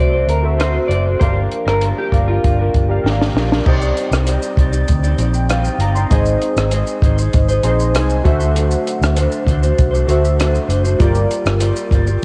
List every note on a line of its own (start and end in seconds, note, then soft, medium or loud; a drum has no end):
0.00 0.23 C2 medium
0.00 0.13 A3 medium
0.00 0.14 C4 medium
0.00 0.13 F#4 medium
0.00 0.42 F#4 medium
0.00 0.18 A4 medium
0.00 0.11 C5 medium
0.00 0.44 C5 medium
0.00 0.28 D5 medium
0.00 0.45 E5 loud
0.00 1.23 A5 medium
0.12 0.58 C4 soft
0.12 0.58 F#4 soft
0.12 0.59 C5 medium
0.27 0.77 D2 medium
0.27 0.44 A#4 medium
0.27 closed hi-hat soft
0.42 0.94 F#4 medium
0.42 0.95 A4 medium
0.42 0.95 C5 medium
0.42 0.96 E5 medium
0.58 0.90 D3 medium
0.58 0.89 A3 medium
0.58 0.89 C4 medium
0.58 0.90 F#4 medium
0.58 0.91 C5 medium
0.58 0.75 C5 medium
0.58 cross-stick medium
0.58 closed hi-hat medium
0.88 1.14 F#1 medium
0.88 1.05 A3 medium
0.88 1.06 C4 medium
0.88 1.04 D5 medium
0.88 closed hi-hat soft
0.92 1.06 F#4 medium
0.92 1.04 C5 medium
1.05 1.21 C4 soft
1.05 1.22 F#4 medium
1.05 1.21 C5 medium
1.19 1.45 G1 medium
1.19 1.36 G2 medium
1.19 1.36 D3 medium
1.19 1.37 F3 medium
1.19 1.37 A#3 medium
1.19 1.36 D4 medium
1.19 1.81 G4 medium
1.19 1.82 A#4 medium
1.19 1.34 A#4 medium
1.19 1.35 C5 medium
1.19 1.83 D5 medium
1.19 1.83 F5 medium
1.19 kick loud
1.19 closed hi-hat medium
1.35 1.68 F3 soft
1.35 1.67 A#3 soft
1.35 1.66 D4 soft
1.35 1.64 A#4 soft
1.52 closed hi-hat soft
1.65 1.91 G1 medium
1.65 1.82 F3 soft
1.65 1.82 A#3 soft
1.65 1.82 D4 medium
1.65 1.82 A#4 medium
1.65 cross-stick medium
1.81 2.13 G2 medium
1.81 2.13 D3 medium
1.81 2.11 F3 medium
1.81 2.12 A#3 medium
1.81 2.14 D4 medium
1.81 2.14 A#4 medium
1.81 closed hi-hat medium
1.98 2.13 G4 medium
2.11 2.37 G1 medium
2.11 2.58 F3 medium
2.11 2.59 A#3 medium
2.11 2.60 D4 medium
2.11 2.63 G4 medium
2.11 2.63 A#4 medium
2.11 2.64 D5 medium
2.11 2.64 F5 medium
2.11 kick medium
2.11 closed hi-hat soft
2.15 2.58 A#4 medium
2.28 2.71 F4 medium
2.44 2.69 G1 medium
2.44 kick medium
2.44 closed hi-hat medium
2.59 3.04 F3 soft
2.59 3.04 A#3 soft
2.59 3.05 D4 soft
2.59 3.05 A#4 soft
2.74 2.99 G1 medium
2.74 kick medium
2.74 closed hi-hat soft
2.89 3.40 G4 medium
2.89 3.40 A#4 medium
2.89 3.41 D5 medium
2.89 3.41 F5 medium
3.04 3.29 G#1 medium
3.04 3.35 G2 medium
3.04 3.35 D3 medium
3.04 3.33 F3 medium
3.04 3.35 A#3 medium
3.04 3.36 D4 medium
3.04 3.36 A#4 medium
3.04 snare soft
3.21 snare medium
3.34 3.59 A#1 medium
3.34 3.50 F3 medium
3.34 3.51 A#3 soft
3.34 3.51 D4 medium
3.34 snare medium
3.39 3.49 A#4 medium
3.50 3.66 F3 soft
3.50 3.66 A#3 medium
3.50 3.67 D4 soft
3.50 3.66 A#4 medium
3.50 snare medium
3.65 3.90 C2 medium
3.65 4.25 C3 medium
3.65 4.27 G3 medium
3.65 4.27 C4 medium
3.65 4.47 D#4 medium
3.65 4.28 D#4 loud
3.65 4.48 G4 medium
3.65 4.28 G4 loud
3.65 4.48 C5 medium
3.65 4.28 D5 medium
3.65 4.49 D5 medium
3.65 kick loud
3.65 crash medium
3.81 shaker medium
3.97 closed hi-hat medium
3.97 shaker soft
4.11 4.36 C2 medium
4.11 cross-stick medium
4.11 shaker medium
4.27 4.58 C3 medium
4.27 4.58 G3 medium
4.27 4.55 C4 medium
4.27 4.57 D#4 medium
4.27 4.58 G4 medium
4.27 4.59 D5 medium
4.27 closed hi-hat medium
4.27 shaker medium
4.42 shaker medium
4.57 4.82 C2 loud
4.57 4.73 C4 medium
4.57 4.73 D#4 medium
4.57 4.72 G4 medium
4.57 4.70 D5 medium
4.57 kick medium
4.57 closed hi-hat soft
4.57 shaker medium
4.72 5.05 C4 soft
4.72 5.04 D#4 soft
4.72 5.03 G4 soft
4.72 5.02 D5 medium
4.72 shaker medium
4.88 5.13 D2 medium
4.88 kick medium
4.88 closed hi-hat medium
4.88 shaker medium
5.03 5.17 C4 soft
5.03 5.19 D#4 soft
5.03 5.19 G4 medium
5.03 5.19 D5 medium
5.03 shaker medium
5.18 5.68 A#1 medium
5.18 5.49 C4 medium
5.18 5.50 D#4 medium
5.18 5.50 G4 medium
5.18 5.51 D5 medium
5.18 closed hi-hat soft
5.18 shaker soft
5.34 5.49 G5 medium
5.34 shaker medium
5.49 5.80 C3 medium
5.49 5.81 G3 medium
5.49 5.79 C4 medium
5.49 5.80 D#4 medium
5.49 5.81 G4 medium
5.49 5.82 D5 medium
5.49 5.64 F5 medium
5.49 cross-stick medium
5.49 closed hi-hat medium
5.49 shaker medium
5.65 5.79 G5 medium
5.65 shaker soft
5.79 6.04 G1 medium
5.79 5.95 C4 medium
5.79 5.96 D#4 medium
5.79 5.96 G4 medium
5.79 5.95 A#5 medium
5.79 closed hi-hat medium
5.79 shaker soft
5.84 5.94 D5 medium
5.95 6.11 D#4 soft
5.95 6.12 G4 medium
5.95 6.11 D5 medium
5.95 6.24 C6 medium
5.95 shaker soft
6.00 6.10 C4 soft
6.10 6.35 G#1 loud
6.10 6.70 G#3 medium
6.10 6.72 C4 medium
6.10 6.92 D#4 medium
6.10 6.72 D#4 medium
6.10 6.92 G#4 medium
6.10 6.72 G#4 medium
6.10 6.93 C5 medium
6.10 6.74 C5 medium
6.10 6.93 D#5 medium
6.10 kick loud
6.10 closed hi-hat medium
6.10 shaker medium
6.26 shaker medium
6.42 closed hi-hat medium
6.42 shaker soft
6.56 6.81 G#1 medium
6.56 cross-stick medium
6.56 shaker medium
6.71 7.02 G#3 medium
6.71 7.01 C4 medium
6.71 7.02 D#4 medium
6.71 7.03 G#4 medium
6.71 7.04 C5 medium
6.71 closed hi-hat medium
6.71 shaker medium
6.87 shaker medium
7.02 7.27 G#1 loud
7.02 7.18 C4 medium
7.02 7.18 D#4 medium
7.02 7.19 G#4 medium
7.02 7.17 C5 medium
7.02 kick medium
7.02 closed hi-hat soft
7.02 shaker soft
7.18 7.50 G#4 soft
7.18 7.47 C5 medium
7.18 shaker medium
7.22 7.51 D#4 soft
7.33 7.58 G#1 medium
7.33 kick medium
7.33 closed hi-hat medium
7.33 shaker medium
7.49 7.64 D#4 soft
7.49 7.65 G#4 medium
7.49 7.64 C5 medium
7.49 shaker medium
7.63 7.95 A#1 medium
7.63 7.94 C4 medium
7.63 8.25 D#4 medium
7.63 7.94 D#4 medium
7.63 8.25 G#4 medium
7.63 7.95 G#4 medium
7.63 8.24 C5 medium
7.63 8.26 D#5 medium
7.63 7.92 C6 medium
7.63 closed hi-hat medium
7.63 shaker medium
7.68 7.95 C5 medium
7.80 shaker medium
7.94 8.19 C2 medium
7.94 8.25 G#3 medium
7.94 8.23 C4 medium
7.94 8.25 D#4 medium
7.94 8.26 G#4 loud
7.94 8.26 C5 medium
7.94 8.23 G#5 medium
7.94 cross-stick loud
7.94 closed hi-hat medium
7.94 shaker medium
8.09 shaker soft
8.24 8.74 D2 medium
8.24 8.40 A3 medium
8.24 8.40 D4 medium
8.24 9.22 F#4 medium
8.24 8.40 F#4 medium
8.24 9.23 A4 medium
8.24 9.23 C5 medium
8.24 8.38 C5 medium
8.24 9.24 E5 medium
8.24 8.53 F#5 medium
8.24 kick medium
8.24 closed hi-hat soft
8.24 shaker soft
8.39 8.54 A3 soft
8.39 8.55 D4 medium
8.39 8.55 F#4 medium
8.39 8.55 C5 medium
8.39 shaker medium
8.54 9.15 D3 medium
8.54 9.15 F#3 medium
8.54 9.15 A3 loud
8.54 9.17 D4 loud
8.54 9.16 F#4 medium
8.54 9.17 C5 loud
8.54 closed hi-hat medium
8.54 shaker medium
8.71 shaker medium
8.87 closed hi-hat medium
8.87 shaker medium
9.01 9.26 D2 medium
9.01 cross-stick loud
9.01 shaker medium
9.15 9.47 D3 medium
9.15 9.47 F#3 medium
9.15 9.45 A3 medium
9.15 9.46 D4 medium
9.15 9.48 F#4 medium
9.15 9.48 C5 medium
9.15 closed hi-hat medium
9.15 shaker medium
9.32 shaker medium
9.46 9.71 D2 medium
9.46 9.62 A3 medium
9.46 9.63 D4 medium
9.46 9.62 F#4 medium
9.46 9.60 C5 medium
9.46 kick medium
9.46 closed hi-hat medium
9.46 shaker soft
9.62 9.94 A3 soft
9.62 9.92 D4 medium
9.62 9.91 F#4 medium
9.62 9.90 C5 medium
9.62 shaker medium
9.78 10.03 C2 medium
9.78 kick medium
9.78 closed hi-hat medium
9.78 shaker medium
9.91 10.05 A3 medium
9.91 10.06 D4 soft
9.91 10.07 F#4 medium
9.91 10.07 C5 medium
9.91 shaker medium
10.06 10.57 D2 medium
10.06 10.38 A3 medium
10.06 10.38 D4 medium
10.06 10.69 F#4 medium
10.06 10.38 F#4 medium
10.06 10.70 A4 medium
10.06 10.39 C5 medium
10.06 10.70 C5 medium
10.06 10.70 E5 medium
10.06 closed hi-hat soft
10.06 shaker medium
10.25 shaker medium
10.38 10.69 D3 medium
10.38 10.69 F#3 medium
10.38 10.67 A3 medium
10.38 10.67 D4 medium
10.38 10.69 F#4 medium
10.38 10.70 C5 medium
10.38 cross-stick loud
10.38 closed hi-hat medium
10.38 shaker medium
10.55 shaker soft
10.68 10.93 F#1 medium
10.68 10.84 A3 medium
10.68 10.84 D4 medium
10.68 10.83 F#4 medium
10.68 10.82 C5 medium
10.68 closed hi-hat soft
10.68 shaker soft
10.83 10.99 A3 soft
10.83 10.99 D4 soft
10.83 11.00 F#4 soft
10.83 10.99 C5 soft
10.83 shaker soft
10.98 11.25 G1 loud
10.98 11.60 G3 medium
10.98 11.60 A#3 loud
10.98 11.81 F4 medium
10.98 11.60 F4 medium
10.98 11.82 G4 medium
10.98 11.62 G4 medium
10.98 11.82 A#4 medium
10.98 11.62 D5 medium
10.98 11.82 D5 medium
10.98 kick loud
10.98 closed hi-hat medium
10.98 shaker medium
11.15 shaker medium
11.31 closed hi-hat soft
11.31 shaker medium
11.46 11.70 G1 loud
11.46 cross-stick loud
11.46 shaker medium
11.60 11.91 G3 medium
11.60 11.90 A#3 medium
11.60 11.91 F4 medium
11.60 11.92 G4 medium
11.60 11.93 D5 medium
11.60 closed hi-hat medium
11.60 shaker medium
11.76 shaker medium
11.91 12.16 G1 medium
11.91 12.07 A#3 medium
11.91 12.07 F4 medium
11.91 12.07 G4 medium
11.91 kick medium
11.91 closed hi-hat soft
11.91 shaker medium
11.95 12.05 D5 medium
12.07 12.25 F4 soft
12.07 12.25 G4 medium
12.07 12.25 D5 medium
12.07 shaker medium